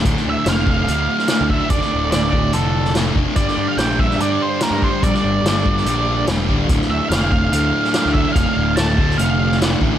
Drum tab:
HH |x---x---x---x---|x---x---x---x---|x---x---x---x---|x---x---x---x---|
SD |-o--o------oo---|-o--o------oo---|-o--o--o----o---|-o--o--o----o---|
BD |o-----o-------o-|o-----o-------o-|o-----o-------o-|o-----o-------o-|

HH |x---x---x---x---|x---x---x---x---|
SD |-o--o------oo---|----o--o---oo---|
BD |o-----o-------o-|o-----o-------o-|